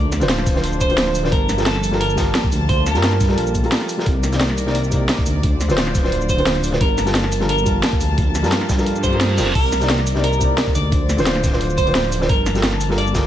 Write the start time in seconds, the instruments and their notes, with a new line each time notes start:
Already playing: detuned saw bass D2, string section F3 D4 C5
0.12 snare, closed hi-hat, cabasa
0.20 detuned saw bass D1, grand piano D3 D4 F4 C5, snare, closed hi-hat, cabasa
0.29 snare, closed hi-hat
0.38 snare
0.46 kick, snare, closed hi-hat, open hi-hat, cabasa
0.54 grand piano D3 D4 F4 C5, snare
0.64 closed hi-hat
0.73 cabasa
0.81 clean electric guitar C5, kick, closed hi-hat, cabasa
0.89 grand piano D3 D4 F4 C5, closed hi-hat
0.97 snare, closed hi-hat, open hi-hat
1.07 snare
1.15 closed hi-hat, open hi-hat, cabasa
1.23 grand piano D3 D4 F4 C5, snare
1.32 detuned saw bass G1, string section A#3 A5, clean electric guitar A#4, kick, closed hi-hat
1.49 snare, closed hi-hat, cabasa
1.57 grand piano G3 F4 A4 A#4, snare, closed hi-hat, cabasa
1.66 clean electric guitar A4, snare, closed hi-hat
1.76 snare
1.84 closed hi-hat, open hi-hat, cabasa
1.91 grand piano G3 F4 A4 A#4, snare
2.01 clean electric guitar A#4, closed hi-hat
2.10 cabasa
2.15 grand piano G3 F4 A5, kick, snare, closed hi-hat, cabasa
2.21 grand piano A#4
2.35 snare, closed hi-hat
2.44 kick
2.52 detuned saw bass D2, closed hi-hat, open hi-hat, cabasa
2.69 clean electric guitar C5, kick, closed hi-hat
2.86 clean electric guitar A#4, snare, closed hi-hat, cabasa
2.94 detuned saw bass G2, grand piano G3 F4 A#4 A5, snare, closed hi-hat, cabasa
3.03 snare, closed hi-hat
3.13 snare
3.20 kick, snare, closed hi-hat, open hi-hat, cabasa
3.28 grand piano G3 F4 A4 A#4, snare
3.38 detuned saw bass A#1, closed hi-hat
3.47 cabasa
3.54 kick, closed hi-hat, cabasa
3.63 grand piano G3 F4 A4 A#4, closed hi-hat
3.72 snare, closed hi-hat, open hi-hat
3.81 snare
3.89 closed hi-hat, open hi-hat, cabasa
3.97 grand piano G3 F4 A4 A#4, snare
4.06 detuned saw bass C2, string section D#3 A#4 D5, kick, closed hi-hat
4.23 snare, closed hi-hat, cabasa
4.32 grand piano C3 A#3 D#4 D5, snare, closed hi-hat, cabasa
4.41 snare, closed hi-hat
4.50 snare
4.57 closed hi-hat, open hi-hat, cabasa
4.66 grand piano C3 A#3 D#4 D5, snare
4.75 closed hi-hat
4.84 cabasa
4.90 grand piano C3 A#3 D#4, kick, closed hi-hat, cabasa
4.95 grand piano D5
5.09 snare, closed hi-hat
5.18 kick
5.26 detuned saw bass D2, closed hi-hat, open hi-hat, cabasa
5.43 string section F3 C5, kick, closed hi-hat
5.61 snare, closed hi-hat, cabasa
5.68 detuned saw bass D1, grand piano D3 D4 F4 C5, snare, closed hi-hat, cabasa
5.78 snare, closed hi-hat
5.87 snare
5.95 kick, snare, closed hi-hat, open hi-hat, cabasa
6.03 grand piano D3 D4 F4 C5, snare
6.12 closed hi-hat
6.21 cabasa
6.29 clean electric guitar C5, kick, closed hi-hat, cabasa
6.37 grand piano D3 D4 F4 C5, closed hi-hat
6.46 snare, closed hi-hat, open hi-hat
6.56 snare
6.63 closed hi-hat, open hi-hat, cabasa
6.71 grand piano D3 D4 F4 C5, snare
6.81 detuned saw bass G1, string section A#3 A5, clean electric guitar A#4, kick, closed hi-hat
6.98 snare, closed hi-hat, cabasa
7.05 grand piano G3 F4 A4 A#4, snare, closed hi-hat, cabasa
7.14 snare, closed hi-hat
7.24 snare
7.32 closed hi-hat, open hi-hat, cabasa
7.39 grand piano G3 F4 A4 A#4, snare
7.49 clean electric guitar A#4, closed hi-hat
7.58 cabasa
7.63 grand piano G3 F4 A5, kick, closed hi-hat, cabasa
7.69 grand piano A#4
7.83 snare, closed hi-hat
7.93 kick
8.01 detuned saw bass D2, closed hi-hat, open hi-hat, cabasa
8.18 kick, closed hi-hat
8.35 snare, closed hi-hat, cabasa
8.42 detuned saw bass G2, grand piano G3 F4 A#4 A5, snare, closed hi-hat, cabasa
8.52 snare, closed hi-hat
8.61 snare
8.69 kick, snare, closed hi-hat, open hi-hat, cabasa
8.77 grand piano G3 F4 A4 A#4, snare, cabasa
8.86 closed hi-hat, reverse cymbal
8.96 closed hi-hat, cabasa
9.03 clean electric guitar C5, kick, closed hi-hat, cabasa
9.12 grand piano G3 F4 A4 A#4, closed hi-hat
9.21 snare, closed hi-hat
9.30 snare
9.37 detuned saw bass F1, grand piano G3 F4 A4 A#4, snare, closed hi-hat, open hi-hat, cabasa
9.55 detuned saw bass C2, string section D#3 A#4 D5, clean electric guitar A#4, kick, closed hi-hat, crash
9.72 snare, closed hi-hat, cabasa
9.80 grand piano C3 A#3 D#4 D5, snare, closed hi-hat, cabasa
9.89 snare, closed hi-hat
9.99 snare
10.07 closed hi-hat, open hi-hat, cabasa
10.14 grand piano C3 A#3 D#4 D5, snare
10.24 clean electric guitar A#4, closed hi-hat
10.33 cabasa
10.38 grand piano C3 A#3 D#4, kick, closed hi-hat, cabasa
10.44 grand piano D5
10.57 snare, closed hi-hat
10.67 kick
10.75 detuned saw bass D2, clean electric guitar D5, closed hi-hat, open hi-hat, cabasa
10.92 string section F3 C5, kick, closed hi-hat
11.09 snare, closed hi-hat, cabasa
11.17 detuned saw bass D1, grand piano D3 D4 F4 C5, snare, closed hi-hat, cabasa
11.26 snare, closed hi-hat
11.36 snare
11.44 kick, snare, closed hi-hat, open hi-hat, cabasa
11.51 grand piano D3 D4 F4 C5, snare
11.61 closed hi-hat
11.70 cabasa
11.78 clean electric guitar C5, kick, closed hi-hat, cabasa
11.85 grand piano D3 D4 F4 C5, closed hi-hat
11.95 snare, closed hi-hat, open hi-hat
12.04 snare
12.12 closed hi-hat, open hi-hat, cabasa
12.20 grand piano D3 D4 F4 C5, snare
12.29 detuned saw bass G1, string section A#3 A5, clean electric guitar A#4, kick, closed hi-hat
12.46 snare, closed hi-hat, cabasa
12.54 grand piano G3 F4 A4 A#4, snare, closed hi-hat, cabasa
12.63 snare, closed hi-hat
12.73 snare
12.81 closed hi-hat, open hi-hat, cabasa
12.89 grand piano G3 F4 A4 A#4, snare
12.98 clean electric guitar D5, closed hi-hat
13.07 cabasa
13.12 grand piano G3 F4 A4, kick, snare, closed hi-hat, cabasa
13.18 grand piano A#4